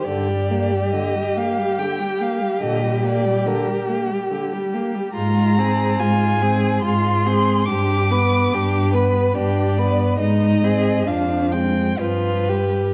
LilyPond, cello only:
\new Staff \with { instrumentName = "Cello" } { \clef bass \time 3/4 \key g \phrygian \tempo 4 = 71 g,4 r2 | bes,4 r2 | aes,4 aes,4 aes,4 | g,4 g,4 g,4 |
aes,4 f,4 g,4 | }